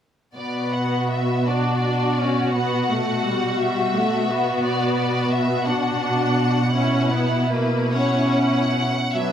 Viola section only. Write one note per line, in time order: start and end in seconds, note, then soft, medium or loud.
0.36 1.43 B3 soft
1.47 1.81 D4 soft
1.83 2.18 D4 soft
2.21 2.56 C#4 soft
2.55 2.89 B3 soft
2.90 3.25 A3 soft
3.25 3.59 G3 soft
3.60 3.94 G3 soft
3.94 4.29 A3 soft
4.29 5.66 B3 soft
5.67 6.73 D4 soft
6.74 7.10 C#4 soft
7.11 7.51 B3 soft
7.52 7.93 A#3 soft
7.92 8.93 C#4 soft
9.13 9.32 F#3 soft
9.13 9.32 B3 soft